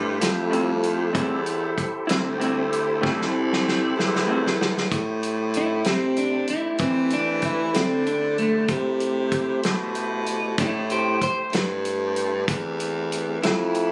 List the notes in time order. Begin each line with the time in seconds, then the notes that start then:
Already playing: G2 A3 E4 G4 A4 C5
0.20 F2, snare, closed hi-hat
0.50 A2 G3 C4 E4, closed hi-hat
0.83 closed hi-hat
1.13 E2 A2 G3 C4 E4 G4 A4 C5, kick, closed hi-hat
1.46 closed hi-hat
1.78 kick, closed hi-hat
2.07 D2 G3 C4 E4, snare, closed hi-hat
2.38 A2 G3 C4 E4, closed hi-hat
2.73 closed hi-hat
3.01 C2 A2 G3 C4 E4, kick, snare
3.21 snare
3.53 snare
3.68 snare
3.96 E2, snare
4.15 snare
4.27 A2 G3 C4 E4
4.46 snare
4.61 snare
4.77 snare
4.91 A2 A3 E4 G4 C5, kick, closed hi-hat
5.23 closed hi-hat
5.54 E4, closed hi-hat
5.84 C3, snare, closed hi-hat
5.88 C4
6.16 D4, closed hi-hat
6.48 E4, closed hi-hat
6.78 E3 C4, kick, closed hi-hat
7.10 D4, closed hi-hat
7.42 E4, kick, closed hi-hat
7.73 D3 C4, snare, closed hi-hat
8.06 D4, closed hi-hat
8.38 A3, closed hi-hat
8.68 C3 A3 E4 G4 C5, kick, closed hi-hat
9.00 closed hi-hat
9.32 kick, closed hi-hat
9.63 B2, snare, closed hi-hat
9.95 closed hi-hat
10.26 closed hi-hat
10.58 A2 E4 A4, kick, snare, closed hi-hat
10.90 G4 C5, closed hi-hat
11.21 C5, kick, closed hi-hat
11.52 G2, snare, closed hi-hat
11.85 closed hi-hat
12.16 closed hi-hat
12.46 E2 A3 C4 E4 G4, kick, closed hi-hat
12.80 closed hi-hat
13.12 closed hi-hat
13.41 F2 E4, snare, closed hi-hat
13.75 closed hi-hat